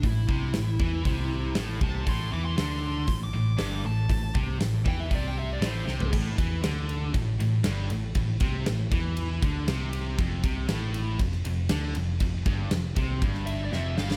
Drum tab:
CC |----------------|----------------|----------------|x---------------|
RD |----------------|----------------|----------------|--x-x-x-x-x-x-x-|
HH |o---o---o---o---|o---o---o---o---|o---o---o---o---|----------------|
SD |----o-------o---|----o-------o---|----o-------o-o-|----o-------o---|
FT |----------------|----------------|---------------o|----------------|
BD |o-o---o-o-----o-|o-------o-------|o-o---o-o-------|o-o-----o-------|

CC |----------------|----------------|----------------|
RD |x-x-x-x-x-x-x-x-|x-x-x-x-x-x-x-x-|x-x-x-x-x-x-----|
HH |----------------|----------------|----------------|
SD |----o-------o---|----o----o--o---|----o----o--o-oo|
FT |----------------|----------------|----------------|
BD |o-o---o---o-----|o-o-----o-------|o-o---o-o-------|